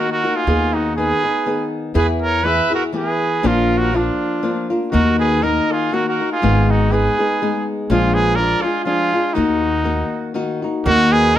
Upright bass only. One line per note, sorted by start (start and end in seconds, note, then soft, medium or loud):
0.47 1.11 D#2 medium
1.95 2.59 E2 loud
3.44 4.08 A#1 medium
4.94 5.58 D#2 loud
6.43 7.07 G#1 medium
7.90 8.53 A#1 loud
9.38 10.02 D#2 medium
10.86 11.39 D#2 loud